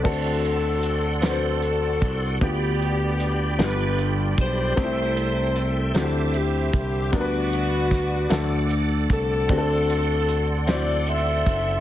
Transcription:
Already playing: C4 F#4 A4
0.03 D2 D3 C4 D4 F#4 A4 D5 F#5 C6, kick, crash
0.45 closed hi-hat
0.83 closed hi-hat
1.22 C4 D4 F#4 A4 B4, snare, closed hi-hat
1.30 C5
1.62 closed hi-hat
2.02 C2, kick, closed hi-hat
2.41 D2 D3 B3 D4 F4 G4 G5 B5, kick, closed hi-hat
2.82 closed hi-hat
3.20 closed hi-hat
3.58 G1 G2 B3 D4 F4 G4 B4, snare, closed hi-hat
3.99 closed hi-hat
4.38 B1 E4 A4 C5, kick, closed hi-hat
4.76 C2 C3 A3 C4 D4 G4 A4 E5 G5 C6, kick, closed hi-hat
4.84 E4
5.17 closed hi-hat
5.56 closed hi-hat
5.94 D2 D3 C4 D4 E4 F#4 C5 D6, snare, closed hi-hat
5.99 G4 A4
6.34 C4 E4, closed hi-hat
6.38 G4
6.73 C2, kick, closed hi-hat
7.12 D2 D3 G3 B3 D4 A#4 B4 D5, kick, closed hi-hat
7.16 B3 D4 F#4
7.21 B4
7.53 closed hi-hat
7.91 kick, snare, closed hi-hat
8.29 D2 D3 A3 D4 F#4 A4 D5 F#5, snare, closed hi-hat
8.70 closed hi-hat
9.10 C2 C4 F#4 A4, kick, closed hi-hat
9.49 D2 D3 C4 D4 F#4 G4 C6, kick, closed hi-hat
9.58 A4
9.90 closed hi-hat
10.29 closed hi-hat
10.67 C4 D4 E4 C5 D5, snare, closed hi-hat
10.74 F#4
11.07 A4 C5 E5, closed hi-hat
11.46 F#1, kick, closed hi-hat

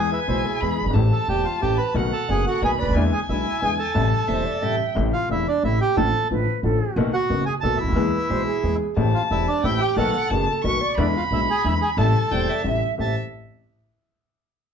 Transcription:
Already playing: G#5
0.11 E4 B4 E5
0.28 B1 B2 E3 G#3 B3 E4 G#4 C5 E5
0.45 G#4
0.61 E2 E3 G#3 B3 G#4 B5
0.81 F#1
0.86 G1
0.91 G#1 A1 E3 A5
0.95 A2 A3 C4 G4
1.12 A4 A5
1.28 E1 E2 E3 A3 C4 G4 G5
1.45 F4 F5
1.61 A1 A2 E3 A3 C4 G4 G5
1.77 B4 B5
1.94 B1 B2 D#3 A3 B3 F#4 F#5
2.13 A4 A5
2.28 F#1 F#2 D#3 A3 B3 F#4 G#4 G#5
2.46 F#4 A4 F#5
2.61 B1 B2 D#3 A3 B3 F#4 G#4 B4 G#5 B5
2.79 C#2 B4 D5 B5
2.86 D2
2.91 D#2
2.95 E2 D3 E3 G#3 B3 E4 G#5
3.12 G#4 G#5
3.29 B1 B2 D3 G#3 B3 E4 E5
3.61 E2 D3 E3 G#3 B3 E4 G#4 G#5
3.79 A4 A5
3.94 A1 A2 C3 G3 A3 E4 A5
4.28 E1 E2 C3 G3 A3 E4 C5 E5
4.46 D5
4.62 A1 A2 C3 G3 A3 E4 E5 G5
4.95 A1 A2 C3 E3 A3 E4
5.13 F4 F5
5.29 E1 E2 C3 E3 A3 E4 E5
5.48 D4 D5
5.63 A1 A2 C3 E3 A3 E4 E5
5.81 G4 G5
5.97 A1 A2 D3 F3 A3 F4 A4 A5
6.31 A1 A2 D3 F3 A3 F4 B4
6.63 A1 A2 D3 F3 A3 F4 A4
6.96 B1 B2 D#3 A3 B3 F#4
7.13 F#4 F#5
7.29 F#1 F#2 D#3 A3 B3 F#4
7.46 G#4 G#5
7.61 B1 B2 D#3 A3 B3 F#4 A4 A5
7.77 E4 E5
7.83 C#2
7.88 D2 D#2
7.92 D#2 E2 E3 G#3 B3 G#4
7.96 E2
8.13 B4
8.30 B1 B2 E3 G#3 B3 G#4 C5
8.46 G#4
8.63 E2 E3 G#3 B3 G#4
8.96 A1 A2 E3 A3 C4 G4 A5
9.14 F4 F5
9.31 E1 E2 E3 A3 C4 E4 G4 E5
9.48 D4 D5
9.64 A1 A2 E3 A3 C4 E4 G4 E5 G5
9.80 G4 G5
9.97 B1 B2 D#3 A3 B3 F#4 A4 F#5 A5
10.30 F#1 F#2 D#3 A3 B3 F#4 G#4 A5
10.48 A4
10.64 B1 B2 D#3 A3 B3 F#4 B4 C#6
10.81 D5
10.98 E2 D3 E3 G#3 B3 E4 B5
11.16 F4 F5
11.31 B1 B2 D3 G#3 B3 E4 E5
11.50 G#4 G#5
11.64 E2 D3 E3 G#3 B3 E4 E5
11.81 G#4 G#5
11.97 A1 A2 C3 G3 A3 E4 A4 A5
12.31 E1 E2 C3 G3 A3 E4 C5 G5
12.49 D5 E5
12.64 A1 A2 C3 G3 A3 E4 E5
12.98 A1 A3 C4 G4 E5 A5

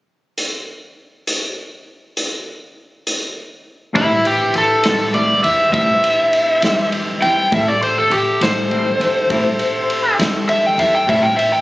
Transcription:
0.38 closed hi-hat
1.27 closed hi-hat
2.17 closed hi-hat
3.07 closed hi-hat
3.93 A1 A2 G3 C4 E4 G4 B4 C5, kick, ride
4.25 G4, ride
4.54 A1, ride
4.58 A4
4.83 A1 G3 C4 E4, snare, ride
5.13 A2 G3 C4 E4 D5, ride
5.44 E2 E5, ride
5.72 A1 A2 G3 C4 E4 E5, kick, ride
6.04 ride
6.33 ride
6.61 E2 G3 C4 E4, snare, ride
6.92 ride
7.20 E2 G3 C4 E4 G5, ride
7.52 A1 A2 G3 C4 E4 G4 A4 C5 E5, kick, ride
7.68 D5
7.82 C5, ride
7.98 A4
8.10 A1 G4, ride
8.41 A1 G3 C4 E4 C5, snare, ride
8.70 A2 G3 C4 E4, ride
9.00 E2, ride
9.30 A1 A2 G3 C4 E4, kick, ride
9.59 ride
9.90 ride
10.19 E2 G3 C4 E4, snare, ride
10.49 E5, ride
10.66 G5
10.78 E2 G3 C4 E4 E5, ride
10.95 G5
11.07 A1 A2 G3 C4 E4 C5 C#5 E5 F5 G#5, kick, ride
11.22 G5
11.36 B4 C5 E5 G5, ride
11.52 G5

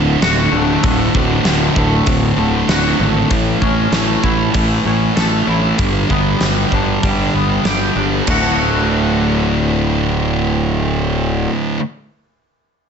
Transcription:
Already playing: D1 D2 A2 D3 A3
0.22 D1 D2 A2 D3 F#4, snare, open hi-hat
0.52 D1 D2 A2 D3 A3
0.83 D1 D2 A2 D3, kick, open hi-hat
1.14 D1 D2 A2 D3, kick
1.45 D1 D2 A2 D3, snare, open hi-hat
1.76 D1 D2 A2 D3 A3, kick
2.06 D1 D2 A2 D3, kick, open hi-hat
2.37 D1 D2 A2 D3
2.68 D1 D2 A2 D3 F#4, snare, open hi-hat
2.99 G#1 D2 A2 D3 A3
3.31 A1 A2 E3 A3, kick, open hi-hat
3.61 A1 A2 E3 A3 C#4, kick
3.92 A1 A2 E3 A3, snare, open hi-hat
4.23 A1 A2 E3 A3 E4, kick
4.54 A1 A2 E3 A3, kick, open hi-hat
4.85 A1 A2 E3 A3 C#4
5.16 A1 A2 E3 A3 A4, snare, open hi-hat
5.47 A1 A2 E3 A3 E4
5.78 G1 G2 D3 G3, kick, open hi-hat
6.10 G1 G2 D3 G3 B3, kick
6.41 G1 G2 D3 G3, snare, open hi-hat
6.72 G1 G2 D3 G3 D4, kick
7.03 G1 G2 D3 G3, kick, open hi-hat
7.34 G1 G2 D3 G3 B3
7.65 G1 G2 D3 G3 G4, snare, open hi-hat
7.96 G1 G2 D3 G3 D4
8.26 D1 D2 A2 D3 A3, kick, crash
8.30 F#4

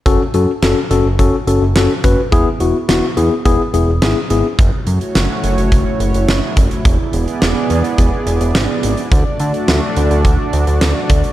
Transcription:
0.06 F#1 C#4 F#4 A4, kick, closed hi-hat
0.34 F#2 C#4 F#4 A4, closed hi-hat
0.62 F#1 C#4 F#4 A4, snare, closed hi-hat
0.91 F#1 C#4 F#4 A4, closed hi-hat
1.05 F#1
1.19 F#1 C#4 F#4 A4, kick, closed hi-hat
1.47 F#1 C#4 F#4 A4, closed hi-hat
1.62 F#1
1.76 F#1 C#4 F#4 A4, snare, closed hi-hat
2.04 F#1 C#4 F#4 B4, kick, closed hi-hat
2.32 E1 B3 E4 G#4, kick, closed hi-hat
2.60 E1 B3 E4 F#4, closed hi-hat
2.89 E1 B3 E4 F#4, snare, closed hi-hat
3.17 E2 B3 E4 G#4, closed hi-hat
3.45 E1 B3 E4 G#4, kick, closed hi-hat
3.74 E1 B3 E4 G#4, closed hi-hat
3.88 E1
4.02 G#1 B3 E4 G#4, snare, closed hi-hat
4.30 G#1 B3 E4 G#4, closed hi-hat
4.59 F#1 A3 E4 F#4 C#5, kick, closed hi-hat
4.87 F#2, closed hi-hat
5.01 closed hi-hat
5.15 F#1, snare, closed hi-hat
5.44 F#1, closed hi-hat
5.58 F#1, closed hi-hat
5.72 F#1, kick, closed hi-hat
6.00 F#1, closed hi-hat
6.14 F#1, closed hi-hat
6.28 F#1, snare, closed hi-hat
6.57 F#1, kick, closed hi-hat
6.71 closed hi-hat
6.85 E1 B3 G#4 D5, kick, closed hi-hat
7.13 E1, closed hi-hat
7.28 closed hi-hat
7.42 E1, snare, closed hi-hat
7.70 E2, closed hi-hat
7.84 closed hi-hat
7.98 E1, kick, closed hi-hat
8.27 E1, closed hi-hat
8.41 E1, closed hi-hat
8.55 G#1, snare, closed hi-hat
8.83 G#1, closed hi-hat
8.97 closed hi-hat
9.11 D2 A3 D4 F#4, kick, closed hi-hat
9.40 D3, closed hi-hat
9.54 closed hi-hat
9.68 D2, snare, closed hi-hat
9.96 D2, closed hi-hat
10.11 D2, closed hi-hat
10.25 D2, kick, closed hi-hat
10.53 D2, closed hi-hat
10.67 D2, closed hi-hat
10.81 D2, snare, closed hi-hat
11.10 D2, kick, closed hi-hat
11.24 closed hi-hat

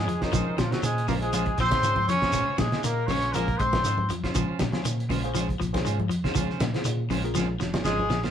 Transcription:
Already playing: G#3 G#4
0.08 F2 F3, muted clean electric guitar stroke, closed hi-hat
0.20 C#4 D#4 F4 G#4 C5, kick, snare, closed hi-hat
0.24 D#3 C#4
0.32 A#1 F3 G#3 C#4 F4 C5, kick, snare, closed hi-hat, low conga, shekere
0.47 C#4 F4 C5
0.57 A#2 C#3 F3 F4, muted clean electric guitar stroke, kick, snare, closed hi-hat, high conga, shekere
0.70 F#3 C#4 F4 F#4 G#4 C5, muted clean electric guitar stroke, snare, closed hi-hat
0.83 A#2 D#3 G#3 G#4, muted clean electric guitar stroke, closed hi-hat, shekere
0.98 closed hi-hat
1.08 A#1 C#3 G#3 A#3 C#4 F4 A#4 C5, open hi-hat, high conga, low conga, shekere
1.21 G#3 C#4 F4 G#4 C5, muted clean electric guitar stroke, closed hi-hat
1.33 F3 G#3 C#4 F4 C5, closed hi-hat, high conga, shekere
1.46 muted clean electric guitar stroke, kick, closed hi-hat
1.58 A#1 F3 C4 C5, muted clean electric guitar stroke, kick, snare, closed hi-hat, shekere
1.71 C#4 F4 G#4 C5, kick, snare, closed hi-hat, high conga
1.82 G#2 D#3 G#3 C#4 F4 C5, closed hi-hat, shekere
1.96 muted clean electric guitar stroke, high conga, low conga
2.08 F2 F3 C#4 C#5, muted clean electric guitar stroke, snare, closed hi-hat, high conga, shekere
2.22 C#4 F4 G#4 C5, kick, snare, closed hi-hat
2.32 A#1 C#3 G#3 C#4 F4 C5, kick, closed hi-hat, low conga, shekere
2.47 C#4 F4 C5
2.58 A#2 C#3 G#4, muted clean electric guitar stroke, kick, snare, closed hi-hat, high conga, shekere
2.63 G#3
2.72 C#4 F4 G#4 D#5, muted clean electric guitar stroke, snare, closed hi-hat
2.83 A#2 D#3 A#3 A#4, muted clean electric guitar stroke, closed hi-hat, shekere
3.07 A#1 C#3 G#3 C#4 F4 C5 C#5, open hi-hat, high conga, low conga, shekere
3.12 C#4
3.22 C#4 F4 G#4 C5, muted clean electric guitar stroke, closed hi-hat
3.33 F3 G#3 A#3 C#4 A#4 C5, muted clean electric guitar stroke, closed hi-hat, shekere
3.48 muted clean electric guitar stroke, kick, closed hi-hat
3.57 A#1 G#3 C4 C5, muted clean electric guitar stroke, kick, closed hi-hat, shekere
3.73 C#4 F4 G#4 C5, kick, snare, closed hi-hat, high conga
3.84 G#2 D#3 G#3 C#4 F4 C5, closed hi-hat, shekere
3.98 muted clean electric guitar stroke, high conga
4.08 F2 F3, muted clean electric guitar stroke, closed hi-hat, high conga, shekere
4.23 C#4 F4 G#4 C5, kick, snare, closed hi-hat
4.34 A#1 F3 G#3 C#4 F4 C5, kick, closed hi-hat, low conga, shekere
4.48 C#4 F4 C5, muted fingered electric bass stroke
4.59 A#2 C#3, kick, snare, closed hi-hat, high conga, shekere
4.72 C#4 F4 G#4 C5, muted clean electric guitar stroke, snare, closed hi-hat, high conga
4.85 A#2 D#3, muted clean electric guitar stroke, closed hi-hat, shekere
5.00 closed hi-hat
5.08 A#1 C#3 G#3 C#4 F4 C5, open hi-hat, high conga, low conga, shekere
5.23 C#4 F4 G#4 C5, muted clean electric guitar stroke, closed hi-hat
5.35 F3 G#3 C#4 F4 C5, closed hi-hat, shekere
5.48 muted clean electric guitar stroke, kick, closed hi-hat
5.60 A#1 F3, muted clean electric guitar stroke, kick, closed hi-hat, shekere
5.73 C#4 F4 G#4 C5, kick, snare, closed hi-hat, high conga
5.85 G#2 D#3 G#3 C#4 F4 C5, closed hi-hat, shekere
5.99 muted clean electric guitar stroke, high conga
6.09 F2 F3, muted clean electric guitar stroke, closed hi-hat, shekere
6.24 C#4 F4 G#4 C5 C#5, kick, snare, closed hi-hat
6.35 A#1 F3 G#3 C#4 F4 C5, kick, closed hi-hat, low conga, shekere
6.49 C#4 C5, muted fingered electric bass stroke, snare
6.60 A#2 C#3, muted clean electric guitar stroke, snare, closed hi-hat, high conga, shekere
6.74 C#4 F4 G#4 C5, muted clean electric guitar stroke, snare, closed hi-hat
6.85 A#2 D#3, muted clean electric guitar stroke, closed hi-hat, shekere
7.10 A#1 C#3 G#3 C#4 F4 C5, open hi-hat, high conga, low conga, shekere
7.24 C#4 F4 G#4 A#4, muted clean electric guitar stroke, closed hi-hat
7.35 F3 G#3 C#4 F4 C5, snare, high conga, shekere
7.49 muted clean electric guitar stroke
7.60 F1 F3, muted clean electric guitar stroke, snare, shekere
7.73 C#4 F4 G#4 C5, snare, high conga
7.84 G#1 F3 G#3 C#4 G#4 C5, snare, shekere
7.98 muted clean electric guitar stroke, high conga
8.09 A#1 F3, muted clean electric guitar stroke, snare, shekere
8.23 C#4 F4 G#4 A#4 C5, snare

